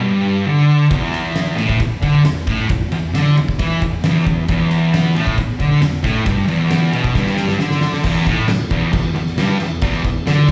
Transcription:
0.01 G2
0.46 D3
0.90 E2, kick, ride
1.14 ride
1.36 snare, ride
1.56 A2, ride
1.69 kick
1.80 E2, kick, ride
2.02 D3, kick, ride
2.24 E2, snare, ride
2.37 snare
2.47 A2, kick, ride
2.69 E2, kick, ride
2.92 E2, ride
3.14 D3, snare, ride
3.37 E2, ride
3.48 kick, snare
3.59 E3, kick, ride
3.82 E2, kick, ride
4.04 E2, snare, ride
4.26 E2, kick, ride
4.48 E2, kick, ride
4.71 ride
4.94 snare, ride
5.16 A2, ride
5.27 kick
5.38 E2, kick, ride
5.60 D3, kick, ride
5.81 E2, snare, ride
5.93 snare
6.03 A2, kick, ride
6.25 G2, kick, ride
6.47 E2, ride
6.71 snare, ride
6.93 B2, ride
7.04 kick, snare
7.14 G2, kick, snare
7.26 snare
7.37 snare
7.48 snare
7.59 D3, snare
7.71 snare
7.81 snare
7.93 snare
8.04 E2, kick, crash
8.27 A2, kick, crash
8.48 E2, snare, crash
8.70 E2, kick, crash
8.93 E2, kick, crash
9.15 E2, crash
9.26 snare
9.38 G2, snare, crash
9.60 E2, crash
9.81 E2, kick, crash
10.04 E2, kick, crash
10.27 D3, snare, crash
10.48 E2

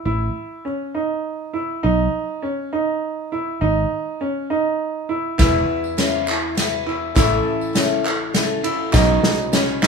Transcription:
0.05 A1 E4
0.65 C#4
0.95 D#4
1.53 E4
1.83 B1 D#4
2.42 C#4
2.73 D#4
3.32 E4
3.61 G#1 D#4
4.21 C#4
4.50 D#4
5.09 E4
5.38 E1 E2 E3 B3 E4 G#4 B4 E5, kick, snare, clap, ride, tambourine
5.55 clap
5.84 tambourine
5.97 B3 C#4 E4 G#4 B4, snare, ride, tambourine
6.13 clap
6.26 E4 G#4 B4, clap
6.55 B3 E4 G#4 B4, snare, ride, tambourine
6.87 E4, clap
7.15 A1 A2 A3 C#4 E4 A4 C#5 E5, kick, snare, clap, ride, tambourine
7.32 clap
7.61 tambourine
7.73 A3 C#4 E4 A4 C#5, snare, ride, tambourine
7.91 clap
8.04 E4 A4 C#5, clap
8.33 A3 C#4 E4 A4 C#5 E5, snare, ride, tambourine
8.64 E4, clap, ride
8.92 B1 B2 B3 C#4 D#4 F#4 B4 C#5 D#5, kick, snare, clap, ride, tambourine
9.09 clap
9.23 snare
9.38 tambourine
9.52 B3 C#4 D#4 F#4 C#5, snare, ride, tambourine
9.68 clap
9.81 D#4 F#4 C#5, snare, clap

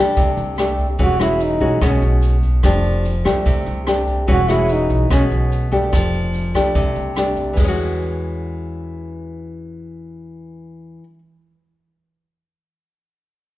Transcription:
Already playing: C2 F3 A3 D4 G4
0.17 C2 C3, kick, closed hi-hat, shaker
0.37 C2, closed hi-hat, shaker
0.58 A3 D4 G4, cross-stick, closed hi-hat, shaker
0.79 kick, closed hi-hat, shaker
0.99 E1 E3 G#3 C#4 F#4, kick, closed hi-hat, shaker
1.03 F#4
1.19 G#3 C#4 E4 F#4, cross-stick, closed hi-hat, shaker
1.40 closed hi-hat, shaker
1.44 D#4
1.60 B1 G#3 C#4 F#4, kick, closed hi-hat, shaker
1.81 B1 B2 G#3 C#4 F#4, kick, cross-stick, closed hi-hat, shaker
2.02 B1, closed hi-hat, shaker
2.22 closed hi-hat, shaker
2.43 kick, closed hi-hat, shaker
2.63 F1 F3 A3 D4 G4, kick, cross-stick, closed hi-hat, shaker
2.84 closed hi-hat, shaker
3.05 closed hi-hat, shaker
3.24 C2 A3 D4 G4, kick, cross-stick, closed hi-hat, shaker
3.46 C2 C3, kick, closed hi-hat, shaker
3.66 C2, closed hi-hat, shaker
3.87 A3 D4 G4, cross-stick, closed hi-hat, shaker
4.07 kick, closed hi-hat, shaker
4.28 E1 E3 G#3 C#4 F#4, kick, closed hi-hat, shaker
4.32 F#4
4.48 G#3 C#4 E4 F#4, cross-stick, closed hi-hat, shaker
4.69 D#4, closed hi-hat, shaker
4.90 B1, kick, closed hi-hat, shaker
5.10 B1 B2 G#3 C#4 F#4, kick, cross-stick, closed hi-hat, shaker
5.31 B1, closed hi-hat, shaker
5.52 closed hi-hat, shaker
5.72 A3 D4 G4, kick, closed hi-hat, shaker
5.93 F1 F3, kick, cross-stick, closed hi-hat, shaker
6.13 closed hi-hat, shaker
6.34 closed hi-hat, shaker
6.54 C2 A3 D4 G4, kick, cross-stick, closed hi-hat, shaker
6.75 C2 C3, kick, closed hi-hat, shaker
6.96 C2, closed hi-hat, shaker
7.16 A3 D4 G4, cross-stick, closed hi-hat, shaker
7.36 kick, closed hi-hat, shaker
7.53 E2 E3, kick, crash, shaker
7.59 G#3
7.64 C#4
7.68 F#4

